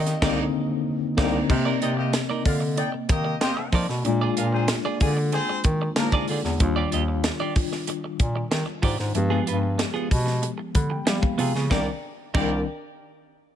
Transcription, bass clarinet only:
0, 0, Header, 1, 2, 480
1, 0, Start_track
1, 0, Key_signature, -3, "minor"
1, 0, Tempo, 638094
1, 1125, Time_signature, 4, 2, 24, 8
1, 10197, End_track
2, 0, Start_track
2, 0, Title_t, "Bass clarinet"
2, 0, Program_c, 0, 71
2, 0, Note_on_c, 0, 51, 99
2, 115, Note_off_c, 0, 51, 0
2, 166, Note_on_c, 0, 36, 93
2, 329, Note_off_c, 0, 36, 0
2, 887, Note_on_c, 0, 36, 97
2, 1050, Note_off_c, 0, 36, 0
2, 1125, Note_on_c, 0, 48, 113
2, 1314, Note_off_c, 0, 48, 0
2, 1368, Note_on_c, 0, 48, 95
2, 1650, Note_off_c, 0, 48, 0
2, 1847, Note_on_c, 0, 50, 95
2, 2129, Note_off_c, 0, 50, 0
2, 2328, Note_on_c, 0, 51, 84
2, 2516, Note_off_c, 0, 51, 0
2, 2566, Note_on_c, 0, 60, 103
2, 2660, Note_off_c, 0, 60, 0
2, 2801, Note_on_c, 0, 53, 93
2, 2897, Note_off_c, 0, 53, 0
2, 2929, Note_on_c, 0, 47, 87
2, 3022, Note_off_c, 0, 47, 0
2, 3047, Note_on_c, 0, 46, 107
2, 3235, Note_off_c, 0, 46, 0
2, 3284, Note_on_c, 0, 46, 101
2, 3568, Note_off_c, 0, 46, 0
2, 3769, Note_on_c, 0, 50, 106
2, 4051, Note_off_c, 0, 50, 0
2, 4246, Note_on_c, 0, 51, 92
2, 4434, Note_off_c, 0, 51, 0
2, 4489, Note_on_c, 0, 58, 99
2, 4582, Note_off_c, 0, 58, 0
2, 4728, Note_on_c, 0, 50, 91
2, 4821, Note_off_c, 0, 50, 0
2, 4849, Note_on_c, 0, 40, 90
2, 4942, Note_off_c, 0, 40, 0
2, 4967, Note_on_c, 0, 39, 108
2, 5155, Note_off_c, 0, 39, 0
2, 5209, Note_on_c, 0, 39, 99
2, 5490, Note_off_c, 0, 39, 0
2, 6165, Note_on_c, 0, 46, 97
2, 6354, Note_off_c, 0, 46, 0
2, 6401, Note_on_c, 0, 51, 103
2, 6497, Note_off_c, 0, 51, 0
2, 6641, Note_on_c, 0, 44, 92
2, 6737, Note_off_c, 0, 44, 0
2, 6764, Note_on_c, 0, 44, 90
2, 6858, Note_off_c, 0, 44, 0
2, 6882, Note_on_c, 0, 43, 104
2, 7072, Note_off_c, 0, 43, 0
2, 7124, Note_on_c, 0, 43, 92
2, 7407, Note_off_c, 0, 43, 0
2, 7607, Note_on_c, 0, 47, 104
2, 7889, Note_off_c, 0, 47, 0
2, 8088, Note_on_c, 0, 50, 83
2, 8275, Note_off_c, 0, 50, 0
2, 8325, Note_on_c, 0, 55, 89
2, 8419, Note_off_c, 0, 55, 0
2, 8563, Note_on_c, 0, 48, 89
2, 8657, Note_off_c, 0, 48, 0
2, 8687, Note_on_c, 0, 49, 91
2, 8780, Note_off_c, 0, 49, 0
2, 8808, Note_on_c, 0, 36, 89
2, 8940, Note_off_c, 0, 36, 0
2, 9289, Note_on_c, 0, 36, 95
2, 9509, Note_off_c, 0, 36, 0
2, 10197, End_track
0, 0, End_of_file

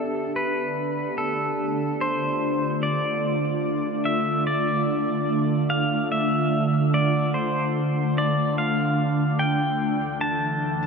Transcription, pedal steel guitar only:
0, 0, Header, 1, 2, 480
1, 0, Start_track
1, 0, Tempo, 821918
1, 1173, Time_signature, 3, 2, 24, 8
1, 6346, End_track
2, 0, Start_track
2, 0, Title_t, "Pedal steel guitar"
2, 0, Program_c, 0, 26
2, 0, Note_on_c, 0, 69, 69
2, 209, Note_off_c, 0, 69, 0
2, 211, Note_on_c, 0, 71, 74
2, 686, Note_off_c, 0, 71, 0
2, 688, Note_on_c, 0, 69, 68
2, 1176, Note_on_c, 0, 72, 86
2, 1185, Note_off_c, 0, 69, 0
2, 1652, Note_on_c, 0, 74, 82
2, 1669, Note_off_c, 0, 72, 0
2, 2368, Note_on_c, 0, 76, 74
2, 2394, Note_off_c, 0, 74, 0
2, 2607, Note_off_c, 0, 76, 0
2, 2609, Note_on_c, 0, 74, 76
2, 3326, Note_off_c, 0, 74, 0
2, 3328, Note_on_c, 0, 77, 84
2, 3570, Note_off_c, 0, 77, 0
2, 3572, Note_on_c, 0, 76, 85
2, 4051, Note_off_c, 0, 76, 0
2, 4054, Note_on_c, 0, 74, 88
2, 4288, Note_on_c, 0, 72, 77
2, 4301, Note_off_c, 0, 74, 0
2, 4778, Note_on_c, 0, 74, 94
2, 4785, Note_off_c, 0, 72, 0
2, 5009, Note_off_c, 0, 74, 0
2, 5012, Note_on_c, 0, 77, 95
2, 5484, Note_off_c, 0, 77, 0
2, 5486, Note_on_c, 0, 79, 96
2, 5961, Note_off_c, 0, 79, 0
2, 5964, Note_on_c, 0, 81, 94
2, 6346, Note_off_c, 0, 81, 0
2, 6346, End_track
0, 0, End_of_file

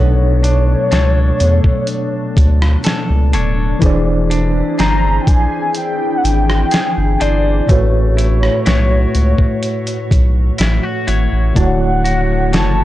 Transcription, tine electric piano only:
0, 0, Header, 1, 2, 480
1, 0, Start_track
1, 0, Tempo, 967742
1, 1895, Time_signature, 4, 2, 24, 8
1, 6369, End_track
2, 0, Start_track
2, 0, Title_t, "Tine electric piano"
2, 0, Program_c, 0, 4
2, 0, Note_on_c, 0, 47, 68
2, 0, Note_on_c, 0, 54, 61
2, 0, Note_on_c, 0, 62, 59
2, 0, Note_on_c, 0, 69, 62
2, 0, Note_on_c, 0, 73, 74
2, 63, Control_c, 0, 64, 127
2, 1869, Note_off_c, 0, 47, 0
2, 1873, Note_off_c, 0, 54, 0
2, 1877, Note_off_c, 0, 62, 0
2, 1880, Note_on_c, 0, 52, 81
2, 1882, Note_off_c, 0, 69, 0
2, 1886, Note_off_c, 0, 73, 0
2, 1886, Note_on_c, 0, 64, 75
2, 1893, Note_on_c, 0, 62, 77
2, 1900, Note_on_c, 0, 68, 74
2, 1902, Control_c, 0, 64, 0
2, 1907, Note_on_c, 0, 72, 77
2, 1915, Note_on_c, 0, 74, 91
2, 1990, Control_c, 0, 64, 127
2, 3787, Note_off_c, 0, 52, 0
2, 3791, Note_off_c, 0, 64, 0
2, 3794, Note_off_c, 0, 62, 0
2, 3798, Note_off_c, 0, 68, 0
2, 3801, Note_off_c, 0, 72, 0
2, 3802, Note_on_c, 0, 45, 64
2, 3805, Note_off_c, 0, 74, 0
2, 3811, Note_on_c, 0, 57, 63
2, 3819, Note_on_c, 0, 66, 66
2, 3822, Control_c, 0, 64, 0
2, 3828, Note_on_c, 0, 71, 60
2, 3837, Note_on_c, 0, 73, 71
2, 3909, Control_c, 0, 64, 127
2, 5709, Note_off_c, 0, 45, 0
2, 5713, Note_off_c, 0, 57, 0
2, 5717, Note_off_c, 0, 66, 0
2, 5720, Note_on_c, 0, 50, 65
2, 5721, Note_off_c, 0, 71, 0
2, 5726, Note_off_c, 0, 73, 0
2, 5729, Note_on_c, 0, 57, 62
2, 5738, Note_on_c, 0, 64, 59
2, 5741, Control_c, 0, 64, 0
2, 5747, Note_on_c, 0, 66, 60
2, 5756, Note_on_c, 0, 73, 75
2, 5827, Control_c, 0, 64, 127
2, 6369, Note_off_c, 0, 50, 0
2, 6369, Note_off_c, 0, 57, 0
2, 6369, Note_off_c, 0, 64, 0
2, 6369, Note_off_c, 0, 66, 0
2, 6369, Note_off_c, 0, 73, 0
2, 6369, End_track
0, 0, End_of_file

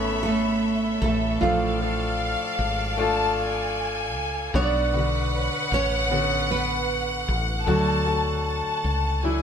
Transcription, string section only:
0, 0, Header, 1, 2, 480
1, 0, Start_track
1, 0, Tempo, 783290
1, 864, Time_signature, 4, 2, 24, 8
1, 5773, End_track
2, 0, Start_track
2, 0, Title_t, "String section"
2, 0, Program_c, 0, 48
2, 0, Note_on_c, 0, 69, 70
2, 0, Note_on_c, 0, 73, 61
2, 0, Note_on_c, 0, 76, 64
2, 0, Note_on_c, 0, 83, 78
2, 840, Note_off_c, 0, 73, 0
2, 841, Note_off_c, 0, 76, 0
2, 843, Note_off_c, 0, 83, 0
2, 865, Note_on_c, 0, 77, 72
2, 868, Note_on_c, 0, 74, 69
2, 2759, Note_off_c, 0, 69, 0
2, 2766, Note_off_c, 0, 77, 0
2, 2768, Note_off_c, 0, 74, 0
2, 2786, Note_on_c, 0, 71, 89
2, 2788, Note_on_c, 0, 78, 72
2, 4681, Note_off_c, 0, 71, 0
2, 5773, Note_off_c, 0, 78, 0
2, 5773, End_track
0, 0, End_of_file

